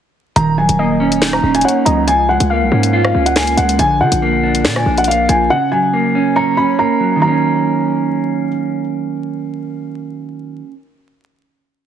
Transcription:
0.36 808-style bass D#1, clean electric guitar D#3, grand piano A#5, closed hi-hat
0.58 clean electric guitar F#3, grand piano G#5
0.69 808-style bass D#1, closed hi-hat
0.79 clean electric guitar A#3, synth pluck D#5
1.00 clean electric guitar C#4
1.12 closed hi-hat
1.22 clean electric guitar D#4, finger snap, snare
1.33 grand piano A#5, cross-stick
1.43 808-style bass D#1, clean electric guitar C#4
1.54 grand piano G#5, closed hi-hat
1.61 clean electric guitar A#3, synth pluck C#5, grand piano F#5, closed hi-hat
1.68 closed hi-hat
1.85 808-style bass C#2, clean electric guitar F#3, synth pluck D#5, grand piano A#5, closed hi-hat
2.07 clean electric guitar F3, grand piano G#5, closed hi-hat
2.28 clean electric guitar G#3, grand piano F#5
2.40 808-style bass C#2, closed hi-hat
2.50 clean electric guitar A#3, synth pluck F5
2.62 808-style bass B1
2.72 808-style bass G#2, clean electric guitar C#4
2.83 closed hi-hat
2.93 clean electric guitar F4
3.05 grand piano F5, cross-stick
3.14 808-style bass C#2, clean electric guitar C#4
3.26 grand piano F#5, closed hi-hat
3.36 clean electric guitar A#3, grand piano G#5, finger snap, snare, closed hi-hat
3.47 closed hi-hat
3.57 808-style bass C#2, clean electric guitar G#3, grand piano F#5, closed hi-hat
3.69 closed hi-hat
3.79 808-style bass A#1, clean electric guitar D3, grand piano G#5, closed hi-hat
4.00 808-style bass D3, clean electric guitar F3, grand piano F#5
4.12 808-style bass A#1, closed hi-hat
4.22 clean electric guitar A#3
4.43 clean electric guitar D4
4.55 closed hi-hat
4.65 808-style bass A#2, clean electric guitar D5, finger snap, snare
4.76 grand piano G#5, cross-stick
4.86 808-style bass A#1, clean electric guitar D4
4.98 grand piano F#5, closed hi-hat
5.04 clean electric guitar A#3, grand piano F5, closed hi-hat
5.11 closed hi-hat
5.29 808-style bass A#1, clean electric guitar F3, grand piano G#5, closed hi-hat
5.50 clean electric guitar C#3, grand piano F#5
5.72 clean electric guitar F#3, grand piano G#5
5.93 clean electric guitar A#3
6.15 clean electric guitar C#4
6.36 clean electric guitar C#5, grand piano A#5
6.57 clean electric guitar C#4, grand piano B5
6.78 clean electric guitar A#3, grand piano A#5
7.00 clean electric guitar F#3
7.16 clean electric guitar D#3 F#3
7.22 clean electric guitar A#3, grand piano A#5
7.28 clean electric guitar C#4

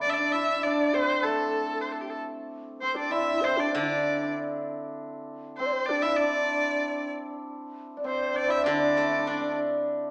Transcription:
Already playing: guzheng D3 A3 D4, hammered dulcimer C4 E4 G4 A4
0.02 hammered dulcimer D4, xiao D4, erhu D5
0.09 erhu E5
0.14 erhu D5
0.18 xiao D4, hammered dulcimer D4
0.32 hammered dulcimer E4, erhu E5
0.63 xiao D4, hammered dulcimer D4, erhu D5
0.94 hammered dulcimer C4, xiao C5, erhu C5
1.23 hammered dulcimer A3, erhu A4, xiao A4
1.81 erhu C5
1.92 erhu A4
2.01 erhu G4
2.10 erhu A4
2.80 hammered dulcimer C4, xiao C5, erhu C5
2.94 hammered dulcimer D4, xiao D4
2.99 erhu D5
3.10 xiao E4, hammered dulcimer E4, erhu E5
3.41 hammered dulcimer C4, xiao C5, erhu C5
3.58 xiao D4, hammered dulcimer D4, erhu D5
3.72 guzheng D3, hammered dulcimer D4, xiao D4
3.77 erhu D5
3.82 xiao E4
3.88 xiao D4
4.22 hammered dulcimer D4
5.58 hammered dulcimer C4, erhu C5, xiao C5
5.66 xiao D5
5.73 xiao C5
5.86 hammered dulcimer D4, erhu D5
5.90 xiao D4
6.02 hammered dulcimer E4, erhu E5
6.06 xiao E4
6.16 hammered dulcimer D4, xiao D4, erhu D5
7.97 hammered dulcimer D4, xiao D5
8.04 hammered dulcimer C4, xiao C5, erhu C5
8.34 hammered dulcimer D4, erhu D5
8.48 hammered dulcimer E4, erhu E5
8.64 guzheng D3, hammered dulcimer D4, erhu D5
8.68 xiao D4
8.73 hammered dulcimer D4
8.79 hammered dulcimer D4
8.89 hammered dulcimer D4
8.97 guzheng A3
9.03 hammered dulcimer D4
9.11 hammered dulcimer D4
9.19 hammered dulcimer D4
9.27 guzheng D4, hammered dulcimer D4
9.36 hammered dulcimer D4
9.41 hammered dulcimer D4

